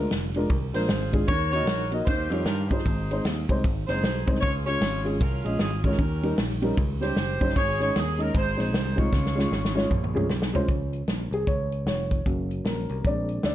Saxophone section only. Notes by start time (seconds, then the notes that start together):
Already playing: F4
0.74 F4 G#4 C5
1.27 F#4 A#4 C#5
1.51 F#4 A#4 C#5
2.05 F4 G4 C5
2.29 A#4
2.44 A#4
2.67 D#4 G#4 C5
3.87 D#4 G#4 C5
4.40 F4 G#4 C#5
4.66 F4 G#4 C#5
5.19 C#4 F4 A#4
5.45 G#4
5.59 G#4
5.83 C#4 G4 A#4
7.01 G4 C5
7.56 G#4 C#5
7.81 C#5
7.97 G#4
8.21 A#4
8.35 D#4 G#4 C5
8.61 C5
8.76 C5
8.98 F4 G#4 C#5